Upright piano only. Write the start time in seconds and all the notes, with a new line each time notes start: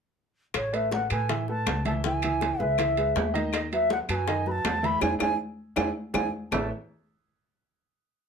0.73 A3 A4 B4
1.11 A3 A4 B4
1.29 E3 E4 E5
1.49 A3 A4 B4
1.85 E3 E4 E5
2.05 E3 E4 E5
2.24 E3 E4 E5
2.59 G#3 G#4 B4
2.78 E3 E4 E5
2.97 G#3 G#4 B4
3.34 D#3 D#4 D#5
3.72 F#3 F#4 B4
4.10 F#3 F#4 B4
4.27 D#3 D#4 D#5
4.46 F#3 F#4 B4
4.83 E3 E4 E5
5.00 D4 E4 G#4
5.19 D4 E4 G#4
5.76 D4 E4 G#4
6.14 D4 E4 G#4
6.52 A3 E4 A4 B4 C#5 E5